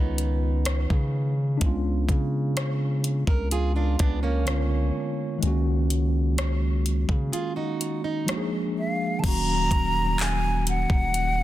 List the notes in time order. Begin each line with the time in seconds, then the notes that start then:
Already playing: C#2 D#3 G#3 B3 C#4 D#4 F4
0.18 closed hi-hat
0.65 cross-stick, closed hi-hat
0.90 C#3, kick
1.57 C#2 G#3 D4, kick, closed hi-hat
1.62 B3 C#4
1.66 F4
2.09 C#3, kick, closed hi-hat
2.57 cross-stick, closed hi-hat
3.04 closed hi-hat
3.27 C#2 A#4, kick
3.51 F4 G#4, closed hi-hat
3.76 D4 F4
3.99 C#2 B3 D4, kick, closed hi-hat
4.23 A#3 C#4
4.45 D3 G#3 B3 C#4, cross-stick, closed hi-hat
4.49 F4
5.38 D#3 G#3
5.43 C#2 A#3 C#4, closed hi-hat
5.47 F#4
5.90 closed hi-hat
6.38 cross-stick, closed hi-hat
6.86 closed hi-hat
7.09 C#3, kick
7.33 F4 G#4, closed hi-hat
7.56 D#4 F#4
7.81 closed hi-hat
8.04 D#4
8.26 F3 G#3 A#3 D4, cross-stick, closed hi-hat
8.30 F#4
8.37 G#4
8.79 F5
9.19 D#3 F#3 A5
9.24 D#1 A#3 C#4 A#5, kick, closed hi-hat, crash
9.28 F#4
9.71 D#1, kick, closed hi-hat
10.19 G#5, clap, closed hi-hat
10.67 F#5, closed hi-hat
10.90 D#1, kick
11.14 closed hi-hat